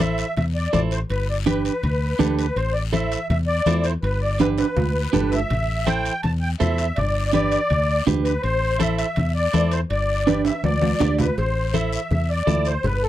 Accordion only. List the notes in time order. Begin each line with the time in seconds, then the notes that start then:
0.00 E5
0.37 E5
0.55 D5
0.73 D5
0.92 C5
1.10 B4
1.30 D5
1.47 B4
1.65 B4
2.37 B4
2.56 C5
2.74 D5
2.93 E5
3.29 E5
3.47 D5
3.84 C5
4.03 B4
4.21 D5
4.40 B4
4.59 B4
5.31 E5
5.86 G5
6.23 A5
6.41 G5
6.60 E5
6.96 D5
7.33 D5
8.24 B4
8.42 C5
8.79 E5
8.98 E5
9.35 D5
9.72 C5
9.91 D5
10.46 E5
10.65 D5
11.19 B4
11.38 C5
11.74 E5
12.11 E5
12.30 D5
12.67 C5
12.85 B4
13.03 A4